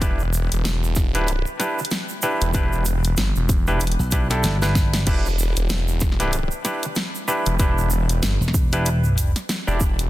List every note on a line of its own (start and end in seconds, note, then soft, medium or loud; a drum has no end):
0.01 0.49 E1 loud
0.01 0.22 D4 medium
0.01 0.22 E4 medium
0.01 0.22 G4 medium
0.01 0.22 B4 loud
0.01 kick loud
0.01 closed hi-hat medium
0.01 shaker soft
0.19 shaker soft
0.33 shaker medium
0.52 1.44 E1 loud
0.52 closed hi-hat medium
0.52 shaker soft
0.65 snare loud
0.65 closed hi-hat medium
0.65 shaker medium
0.84 shaker soft
0.96 kick loud
0.96 snare soft
0.96 shaker medium
1.15 1.31 D4 loud
1.15 1.31 E4 loud
1.15 1.31 G4 loud
1.15 1.31 B4 loud
1.15 closed hi-hat medium
1.15 shaker soft
1.28 closed hi-hat medium
1.28 shaker soft
1.46 shaker soft
1.59 1.80 D4 medium
1.59 1.80 E4 medium
1.59 1.80 G4 medium
1.59 1.80 B4 medium
1.59 snare medium
1.59 closed hi-hat medium
1.59 shaker medium
1.79 shaker soft
1.85 closed hi-hat medium
1.91 snare loud
1.91 closed hi-hat medium
1.91 shaker medium
2.09 shaker soft
2.22 2.50 D4 loud
2.22 2.50 E4 medium
2.22 2.50 G4 medium
2.22 2.50 B4 loud
2.22 shaker medium
2.41 2.70 E1 loud
2.41 closed hi-hat medium
2.41 shaker soft
2.53 2.84 D4 medium
2.53 2.84 E4 medium
2.53 2.84 G4 medium
2.53 2.84 B4 loud
2.53 kick loud
2.53 closed hi-hat medium
2.53 shaker soft
2.73 3.15 E1 loud
2.73 shaker soft
2.85 closed hi-hat soft
2.85 shaker loud
3.04 closed hi-hat medium
3.04 shaker soft
3.17 3.33 G1 loud
3.17 snare loud
3.17 closed hi-hat medium
3.17 shaker medium
3.36 3.79 E1 loud
3.36 shaker soft
3.49 kick loud
3.49 closed hi-hat soft
3.49 shaker medium
3.67 3.84 D4 loud
3.67 3.84 E4 medium
3.67 3.84 G4 medium
3.67 3.84 B4 loud
3.67 shaker soft
3.80 3.96 E1 loud
3.80 closed hi-hat medium
3.80 shaker medium
3.87 closed hi-hat medium
3.92 closed hi-hat soft
3.99 4.42 B1 medium
3.99 shaker soft
4.11 4.28 D4 medium
4.11 4.28 E4 medium
4.11 4.28 G4 medium
4.11 4.28 B4 medium
4.11 kick medium
4.11 closed hi-hat medium
4.11 shaker medium
4.30 4.58 D4 medium
4.30 4.58 E4 medium
4.30 4.58 G4 medium
4.30 4.58 A4 loud
4.30 snare soft
4.30 closed hi-hat medium
4.30 shaker soft
4.43 5.05 G1 medium
4.43 snare medium
4.43 closed hi-hat medium
4.43 shaker medium
4.62 5.04 D4 medium
4.62 5.04 E4 medium
4.62 5.04 G4 medium
4.62 5.04 B4 medium
4.62 snare medium
4.62 shaker soft
4.75 kick loud
4.75 snare medium
4.75 closed hi-hat soft
4.75 shaker medium
4.93 snare medium
4.93 closed hi-hat medium
4.93 shaker soft
5.07 5.54 E1 loud
5.07 5.28 D4 medium
5.07 5.28 E4 medium
5.07 5.28 G4 medium
5.07 5.28 B4 loud
5.07 kick loud
5.07 closed hi-hat medium
5.07 crash medium
5.07 shaker medium
5.26 shaker soft
5.39 shaker medium
5.56 6.49 E1 loud
5.56 closed hi-hat medium
5.56 shaker soft
5.69 snare loud
5.69 closed hi-hat medium
5.69 shaker medium
5.88 shaker soft
6.00 kick loud
6.00 snare soft
6.00 shaker medium
6.12 snare soft
6.20 6.36 D4 loud
6.20 6.36 E4 medium
6.20 6.36 G4 medium
6.20 6.36 B4 loud
6.20 snare soft
6.20 closed hi-hat medium
6.20 shaker soft
6.33 closed hi-hat medium
6.33 shaker soft
6.51 shaker soft
6.65 6.85 D4 medium
6.65 6.85 E4 medium
6.65 6.85 G4 medium
6.65 6.85 B4 medium
6.65 snare medium
6.65 closed hi-hat medium
6.65 shaker loud
6.83 closed hi-hat medium
6.83 shaker soft
6.95 snare loud
6.95 closed hi-hat medium
6.95 shaker soft
7.15 shaker soft
7.28 7.55 D4 medium
7.28 7.55 E4 medium
7.28 7.55 G4 medium
7.28 7.55 B4 loud
7.28 shaker loud
7.46 7.75 E1 loud
7.46 closed hi-hat medium
7.46 shaker soft
7.59 7.89 D4 medium
7.59 7.89 E4 medium
7.59 7.89 G4 medium
7.59 7.89 B4 loud
7.59 kick loud
7.59 closed hi-hat medium
7.59 shaker medium
7.78 8.21 E1 loud
7.78 shaker soft
7.90 shaker medium
8.09 closed hi-hat medium
8.09 shaker soft
8.23 8.38 G1 loud
8.23 snare loud
8.23 closed hi-hat medium
8.23 shaker medium
8.41 9.33 E1 medium
8.41 shaker soft
8.48 snare soft
8.54 kick loud
8.54 shaker loud
8.72 8.89 D4 loud
8.72 8.89 E4 medium
8.72 8.89 G4 medium
8.72 8.89 B4 loud
8.72 closed hi-hat medium
8.72 shaker soft
8.86 closed hi-hat medium
8.86 shaker medium
9.04 shaker soft
9.18 closed hi-hat medium
9.18 shaker loud
9.36 snare soft
9.36 closed hi-hat medium
9.36 shaker soft
9.49 snare loud
9.49 closed hi-hat medium
9.49 shaker medium
9.67 10.10 E1 loud
9.67 9.84 D4 medium
9.67 9.84 E4 medium
9.67 9.84 G4 medium
9.67 9.84 D5 loud
9.67 shaker soft
9.80 kick loud
9.80 shaker medium
9.99 closed hi-hat medium
9.99 shaker soft